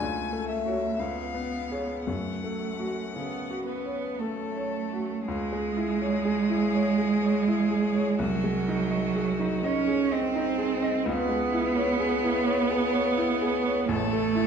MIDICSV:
0, 0, Header, 1, 4, 480
1, 0, Start_track
1, 0, Key_signature, 3, "minor"
1, 0, Tempo, 991736
1, 482, Tempo, 1065719
1, 962, Time_signature, 3, 2, 24, 8
1, 2402, Tempo, 996678
1, 2404, Key_signature, 4, "minor"
1, 2882, Tempo, 964630
1, 4802, Tempo, 943396
1, 7018, End_track
2, 0, Start_track
2, 0, Title_t, "Violin"
2, 0, Program_c, 0, 40
2, 0, Note_on_c, 0, 80, 65
2, 231, Note_off_c, 0, 80, 0
2, 234, Note_on_c, 0, 76, 49
2, 482, Note_on_c, 0, 77, 47
2, 489, Note_off_c, 0, 76, 0
2, 957, Note_off_c, 0, 77, 0
2, 960, Note_on_c, 0, 78, 49
2, 1669, Note_off_c, 0, 78, 0
2, 1682, Note_on_c, 0, 71, 41
2, 1919, Note_on_c, 0, 69, 40
2, 1926, Note_off_c, 0, 71, 0
2, 2400, Note_off_c, 0, 69, 0
2, 2403, Note_on_c, 0, 68, 64
2, 3827, Note_off_c, 0, 68, 0
2, 3852, Note_on_c, 0, 66, 58
2, 4573, Note_on_c, 0, 73, 61
2, 4581, Note_off_c, 0, 66, 0
2, 4805, Note_on_c, 0, 72, 56
2, 4813, Note_off_c, 0, 73, 0
2, 5279, Note_off_c, 0, 72, 0
2, 5282, Note_on_c, 0, 71, 73
2, 6702, Note_off_c, 0, 71, 0
2, 6729, Note_on_c, 0, 69, 82
2, 7018, Note_off_c, 0, 69, 0
2, 7018, End_track
3, 0, Start_track
3, 0, Title_t, "Grand piano"
3, 0, Program_c, 1, 0
3, 0, Control_c, 1, 64, 127
3, 3, Note_on_c, 1, 37, 41
3, 10, Control_c, 1, 64, 0
3, 96, Control_c, 1, 64, 127
3, 159, Note_on_c, 1, 57, 35
3, 321, Note_on_c, 1, 66, 25
3, 327, Note_on_c, 1, 73, 30
3, 416, Note_off_c, 1, 57, 0
3, 467, Note_off_c, 1, 66, 0
3, 468, Note_off_c, 1, 37, 0
3, 470, Note_off_c, 1, 73, 0
3, 482, Note_on_c, 1, 37, 40
3, 491, Control_c, 1, 64, 0
3, 563, Control_c, 1, 64, 127
3, 639, Note_on_c, 1, 59, 31
3, 806, Note_on_c, 1, 68, 26
3, 807, Note_on_c, 1, 73, 31
3, 897, Note_off_c, 1, 59, 0
3, 947, Note_off_c, 1, 37, 0
3, 949, Note_off_c, 1, 68, 0
3, 950, Note_off_c, 1, 73, 0
3, 967, Note_on_c, 1, 42, 38
3, 972, Control_c, 1, 64, 0
3, 1061, Control_c, 1, 64, 127
3, 1131, Note_on_c, 1, 57, 28
3, 1293, Note_on_c, 1, 66, 27
3, 1385, Note_off_c, 1, 57, 0
3, 1455, Note_on_c, 1, 49, 27
3, 1544, Note_off_c, 1, 66, 0
3, 1611, Note_on_c, 1, 66, 29
3, 1706, Note_off_c, 1, 49, 0
3, 1771, Note_on_c, 1, 73, 27
3, 1864, Note_off_c, 1, 66, 0
3, 1931, Note_on_c, 1, 57, 27
3, 2025, Note_off_c, 1, 73, 0
3, 2091, Note_on_c, 1, 73, 31
3, 2187, Note_off_c, 1, 57, 0
3, 2253, Note_on_c, 1, 66, 24
3, 2345, Note_off_c, 1, 73, 0
3, 2389, Note_off_c, 1, 42, 0
3, 2407, Note_off_c, 1, 66, 0
3, 2412, Note_on_c, 1, 37, 50
3, 2414, Control_c, 1, 64, 0
3, 2506, Control_c, 1, 64, 127
3, 2530, Note_on_c, 1, 56, 40
3, 2648, Note_on_c, 1, 64, 42
3, 2721, Note_off_c, 1, 56, 0
3, 2768, Note_on_c, 1, 73, 40
3, 2838, Note_off_c, 1, 64, 0
3, 2881, Note_on_c, 1, 68, 43
3, 2958, Note_off_c, 1, 73, 0
3, 3003, Note_on_c, 1, 64, 46
3, 3076, Note_off_c, 1, 68, 0
3, 3126, Note_on_c, 1, 73, 38
3, 3196, Note_off_c, 1, 64, 0
3, 3243, Note_on_c, 1, 68, 45
3, 3317, Note_off_c, 1, 73, 0
3, 3367, Note_on_c, 1, 73, 39
3, 3435, Note_off_c, 1, 68, 0
3, 3491, Note_on_c, 1, 64, 44
3, 3557, Note_off_c, 1, 73, 0
3, 3605, Note_on_c, 1, 68, 46
3, 3680, Note_off_c, 1, 64, 0
3, 3726, Note_on_c, 1, 73, 41
3, 3799, Note_off_c, 1, 68, 0
3, 3832, Note_off_c, 1, 37, 0
3, 3845, Note_on_c, 1, 36, 54
3, 3848, Note_off_c, 1, 73, 0
3, 3855, Control_c, 1, 64, 0
3, 3940, Control_c, 1, 64, 127
3, 3967, Note_on_c, 1, 56, 41
3, 4089, Note_on_c, 1, 63, 43
3, 4162, Note_off_c, 1, 56, 0
3, 4202, Note_on_c, 1, 75, 39
3, 4282, Note_off_c, 1, 63, 0
3, 4326, Note_on_c, 1, 68, 43
3, 4397, Note_off_c, 1, 75, 0
3, 4444, Note_on_c, 1, 63, 47
3, 4518, Note_off_c, 1, 68, 0
3, 4565, Note_on_c, 1, 75, 44
3, 4637, Note_off_c, 1, 63, 0
3, 4684, Note_on_c, 1, 68, 43
3, 4756, Note_off_c, 1, 75, 0
3, 4800, Note_on_c, 1, 75, 46
3, 4877, Note_off_c, 1, 68, 0
3, 4925, Note_on_c, 1, 63, 50
3, 4996, Note_off_c, 1, 75, 0
3, 5041, Note_on_c, 1, 68, 49
3, 5119, Note_off_c, 1, 63, 0
3, 5163, Note_on_c, 1, 75, 50
3, 5236, Note_off_c, 1, 68, 0
3, 5266, Note_off_c, 1, 36, 0
3, 5281, Note_on_c, 1, 37, 64
3, 5285, Note_off_c, 1, 75, 0
3, 5296, Control_c, 1, 64, 0
3, 5387, Control_c, 1, 64, 127
3, 5400, Note_on_c, 1, 56, 44
3, 5519, Note_on_c, 1, 64, 49
3, 5593, Note_off_c, 1, 56, 0
3, 5641, Note_on_c, 1, 73, 49
3, 5712, Note_off_c, 1, 64, 0
3, 5760, Note_on_c, 1, 68, 53
3, 5832, Note_off_c, 1, 73, 0
3, 5881, Note_on_c, 1, 64, 50
3, 5952, Note_off_c, 1, 68, 0
3, 5999, Note_on_c, 1, 73, 49
3, 6074, Note_off_c, 1, 64, 0
3, 6117, Note_on_c, 1, 68, 49
3, 6194, Note_off_c, 1, 73, 0
3, 6237, Note_on_c, 1, 73, 52
3, 6313, Note_off_c, 1, 68, 0
3, 6359, Note_on_c, 1, 64, 53
3, 6434, Note_off_c, 1, 73, 0
3, 6483, Note_on_c, 1, 68, 54
3, 6554, Note_off_c, 1, 64, 0
3, 6602, Note_on_c, 1, 73, 51
3, 6676, Note_off_c, 1, 68, 0
3, 6701, Note_off_c, 1, 37, 0
3, 6721, Note_on_c, 1, 33, 66
3, 6723, Note_off_c, 1, 73, 0
3, 6734, Control_c, 1, 64, 0
3, 6821, Control_c, 1, 64, 127
3, 6845, Note_on_c, 1, 57, 46
3, 6958, Note_on_c, 1, 64, 54
3, 7018, Note_off_c, 1, 33, 0
3, 7018, Note_off_c, 1, 57, 0
3, 7018, Note_off_c, 1, 64, 0
3, 7018, End_track
4, 0, Start_track
4, 0, Title_t, "Cello"
4, 0, Program_c, 2, 42
4, 6, Note_on_c, 2, 57, 45
4, 483, Note_off_c, 2, 57, 0
4, 485, Note_on_c, 2, 59, 40
4, 960, Note_on_c, 2, 57, 35
4, 967, Note_off_c, 2, 59, 0
4, 1396, Note_off_c, 2, 57, 0
4, 1439, Note_on_c, 2, 59, 50
4, 1664, Note_off_c, 2, 59, 0
4, 1681, Note_on_c, 2, 59, 50
4, 1923, Note_on_c, 2, 57, 51
4, 1929, Note_off_c, 2, 59, 0
4, 2400, Note_on_c, 2, 56, 76
4, 2407, Note_off_c, 2, 57, 0
4, 3842, Note_on_c, 2, 54, 79
4, 3849, Note_off_c, 2, 56, 0
4, 4565, Note_off_c, 2, 54, 0
4, 4569, Note_on_c, 2, 61, 73
4, 4803, Note_on_c, 2, 60, 72
4, 4810, Note_off_c, 2, 61, 0
4, 5292, Note_on_c, 2, 59, 87
4, 5300, Note_off_c, 2, 60, 0
4, 6725, Note_on_c, 2, 57, 101
4, 6732, Note_off_c, 2, 59, 0
4, 7018, Note_off_c, 2, 57, 0
4, 7018, End_track
0, 0, End_of_file